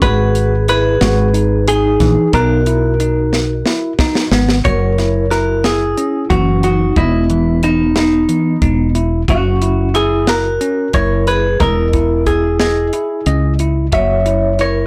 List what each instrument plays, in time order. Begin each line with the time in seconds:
0.02 fretless electric bass G#1, tine electric piano F#4, vibraphone G#4, hollow-body jazz guitar B4, kick, closed hi-hat
0.35 closed hi-hat
0.68 tine electric piano E4, vibraphone G#4, hollow-body jazz guitar B4, closed hi-hat
1.01 fretless electric bass G#1, tine electric piano F#4, snare, closed hi-hat
1.34 tine electric piano D#4, closed hi-hat
1.68 vibraphone D#4, hollow-body jazz guitar G#4, closed hi-hat
2.00 fretless electric bass A#1, tine electric piano E3, kick, snare, closed hi-hat
2.33 fretless electric bass B1, tine electric piano D#4, vibraphone F#4, hollow-body jazz guitar A#4, kick, closed hi-hat
2.66 tine electric piano E4, closed hi-hat
3.00 tine electric piano D#4, closed hi-hat
3.33 snare
3.66 tine electric piano E4, snare
3.99 tine electric piano D#4, kick, snare
4.15 snare
4.31 fretless electric bass G#1, tine electric piano B3, snare
4.49 snare
4.64 fretless electric bass F#1, tine electric piano F#4, vibraphone A#4, hollow-body jazz guitar C#5, kick, closed hi-hat
4.98 tine electric piano E4, snare, closed hi-hat
5.30 tine electric piano E4, vibraphone F#4, hollow-body jazz guitar A#4, snare, closed hi-hat
5.64 vibraphone E4, hollow-body jazz guitar G#4, snare, closed hi-hat
5.97 tine electric piano C#4, closed hi-hat
6.30 fretless electric bass F#1, tine electric piano E3, vibraphone C#4, hollow-body jazz guitar F#4, kick, closed hi-hat
6.63 vibraphone D#4, hollow-body jazz guitar F#4, closed hi-hat
6.96 fretless electric bass E1, vibraphone B3, hollow-body jazz guitar E4, tine electric piano D#5, kick, closed hi-hat
7.30 tine electric piano E3, closed hi-hat
7.63 vibraphone B3, hollow-body jazz guitar D#4, closed hi-hat
7.96 vibraphone B3, tine electric piano D#4, hollow-body jazz guitar D#4, snare, closed hi-hat
8.29 tine electric piano E3, closed hi-hat
8.62 fretless electric bass E1, tine electric piano D#4, kick, closed hi-hat
8.95 tine electric piano E4, closed hi-hat
9.28 fretless electric bass F#1, vibraphone C#4, tine electric piano F#4, hollow-body jazz guitar F#4, kick, closed hi-hat
9.62 tine electric piano E4, closed hi-hat
9.94 tine electric piano E4, vibraphone E4, hollow-body jazz guitar G#4, closed hi-hat
10.27 vibraphone F#4, hollow-body jazz guitar A#4, snare, closed hi-hat
10.61 tine electric piano C#4, closed hi-hat
10.93 fretless electric bass F#1, tine electric piano E4, vibraphone A#4, hollow-body jazz guitar C#5, kick, closed hi-hat
11.27 vibraphone G#4, hollow-body jazz guitar B4, closed hi-hat
11.60 fretless electric bass E1, vibraphone E4, hollow-body jazz guitar A#4, tine electric piano D#5, kick, closed hi-hat
11.93 tine electric piano E4, kick, closed hi-hat
12.26 vibraphone E4, hollow-body jazz guitar G#4, kick, closed hi-hat
12.60 vibraphone E4, hollow-body jazz guitar G#4, tine electric piano D#5, snare, closed hi-hat
12.93 tine electric piano E4, closed hi-hat
13.26 fretless electric bass C#2, tine electric piano D#5, closed hi-hat
13.59 tine electric piano E4, closed hi-hat
13.92 fretless electric bass F#1, tine electric piano F#4, vibraphone C#5, hollow-body jazz guitar E5, kick, closed hi-hat
14.26 tine electric piano E4, closed hi-hat
14.59 tine electric piano E4, vibraphone A#4, hollow-body jazz guitar C#5, closed hi-hat